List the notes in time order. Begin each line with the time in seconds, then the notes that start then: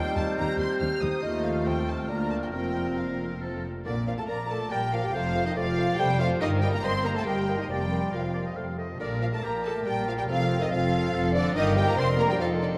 Already playing: G3 C4 D#4 G4 C5 G5 G6
0.16 D#2 G3 D#4 G4 C5 A5
0.37 D#2 G3 D#4 G4 C5 A#5
0.58 D#2 G3 D#4 G4 C5 C6
0.79 D#2 G3 C4 D#4 G4 C5 F6
1.00 D#2 G3 D#4 G4 C5 D#6
1.22 D#2 F3 A3 D#4 F4 A4 C5 D#5 F6
1.44 F5
1.66 C4 G5
1.88 A5
2.00 G5
2.09 D2 F3 A#3 D4 F4 A#4 D5 A#5
2.31 A5
2.44 G5
2.53 F1 F2 F3 A#3 C4 F4 A#4 C5 G5
2.98 F3 A#3 F4 A#4 C5 F5
3.42 F3 A3 F4 A4 C5
3.85 A#1 A#2 D3 A#3 D4 D5
4.07 F3 A#3 F4 D5 F5
4.18 A3 A4 A5
4.28 A#1 A#2 A#3 A#4 D5 A#5
4.49 A3 A#3 A4 D5 A5
4.71 A#1 A#2 G3 A#3 G4 A#4 D5 G5
4.93 F3 A#3 F4 D5 F5
5.03 G3 G4 G5
5.14 F1 F2 F3 A3 F4 C5 F5
5.35 A3 C5
5.46 D#3 D#4 D#5
5.56 F1 F2 F3 A3 F4 C5 D5 F5
5.78 A3 C5
5.98 F1 F2 G3 A3 G4 C5 G5
6.19 F3 A3 F4 C5 F5
6.40 G1 G2 D#3 A#3 D#4 A#4 D#5
6.61 G3 A#3 G4 D#5 G5
6.72 A#3 A#4 A#5
6.83 G1 G2 A#3 C4 C5 D#5 C6
7.04 A#3 A#4 D#5 A#5
7.15 A3 A4 A5
7.25 G1 G2 G3 A#3 G4 A#4 D#5 G5
7.48 A#3 D#5
7.58 D#3 D#4 D#5
7.69 F1 F2 G3 A#3 G4 D5 G5
7.91 A#3 D5
8.12 F1 F2 F3 A#3 F4 A#4 D5 F5
8.34 A#3 D5
8.46 D#5
8.56 F1 F2 A3 C5 F5
8.78 A3 C5 D#5
8.99 A#1 A#2 D3 A#3 D4 A#4 D5
9.20 F3 F4 F5
9.32 A3 A4 A5
9.42 A#1 A#2 A#3 G4 A#4 A#5
9.64 A3 A4 A5
9.85 A#1 A#2 G3 F4 G4 G5
10.07 F3 F4 F5
10.18 G3 G4 G5
10.28 F1 F2 F3 C4 F4 A4 F5
10.60 D#3 D#4 D#5
10.71 F1 F2 F3 C4 F4 A4 F5
11.14 F1 F2 A4
11.34 D3 D4 D5
11.55 G1 G2 D#3 D#4 G4 A#4 D#5
11.77 G3 G4 G5
11.86 A#3 A#4 A#5
11.97 F1 F2 C4 D4 A#4 C5 C6
12.18 A#3 A#4 A#5
12.29 G3 G4 G5
12.39 F1 F2 F3 D#4 F4 A4 F5
12.61 D3 D4 D5
12.73 C3 C4 C5